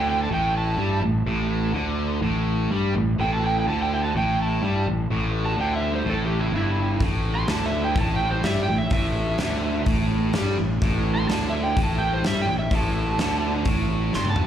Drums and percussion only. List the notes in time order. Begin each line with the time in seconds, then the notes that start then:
7.00 kick, open hi-hat
7.48 snare, open hi-hat
7.96 kick, open hi-hat
8.43 snare, open hi-hat
8.90 kick, open hi-hat
9.38 snare, open hi-hat
9.86 kick, open hi-hat
10.33 snare, open hi-hat
10.82 kick, open hi-hat
11.29 snare, open hi-hat
11.77 kick, open hi-hat
12.24 snare, open hi-hat
12.71 kick, open hi-hat
13.19 snare, open hi-hat
13.65 kick, open hi-hat
14.13 snare
14.25 high tom
14.36 mid tom